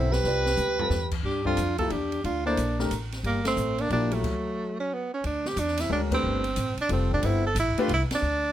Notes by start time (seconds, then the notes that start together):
Already playing: B1 B3 C4 E4 A4 C5
0.10 G4 B4, snare
0.24 C2 C4 F4 B4 D5, snare
0.46 snare
0.57 D2, hi-hat pedal, high tom
0.79 G3 C4 F4 A4, floor tom
0.90 E2, snare
1.11 kick, crash
1.23 G2 D4 G4
1.45 G3 C4 D4 F4 A4, kick
1.57 F2, hi-hat pedal, ride
1.78 F3 A#3 E4 F4 G4 A4, kick, ride
1.90 E2 D4 G4, ride
2.12 ride
2.24 D2 D4 F4, ride
2.45 A#3 D4 E4 A4 C5
2.57 A#1, hi-hat pedal, ride
2.79 A3 D4 G4 A#4, snare
2.91 A1, hi-hat pedal, ride
3.12 snare, ride
3.23 G1 G3 A#3, ride
3.44 A3 C4, snare, ride
3.57 A1, hi-hat pedal
3.78 A#3 D4, ride
3.90 A#1 F3 A#3 D4 E4 G4, ride
4.12 F#3 A3, ride
4.24 kick, crash
4.80 C#4
4.93 B3
5.14 C#4
5.24 D2 D4, ride
5.45 G4, snare
5.56 E2 D4, hi-hat pedal, ride
5.68 snare
5.77 E4, snare, ride
5.89 D2 G#3 C#4 D4 F#4 A#4
6.11 A3 C4 D4 G4 B4, kick, crash
6.23 G1
6.44 ride
6.56 A1, hi-hat pedal, ride
6.77 D4, muted upright bass stroke, ride
6.89 F1 G3 C4 F4 A4, ride
7.11 D4, kick
7.22 G1 B3 E4 A4 C5, ride
7.47 A4
7.55 A1, hi-hat pedal, ride
7.59 E4
7.77 A3 D4 G4 B4, muted upright bass stroke, ride
7.81 F4
7.88 C2, ride
7.94 E4
8.10 muted upright bass stroke, snare, ride
8.15 D4
8.22 D2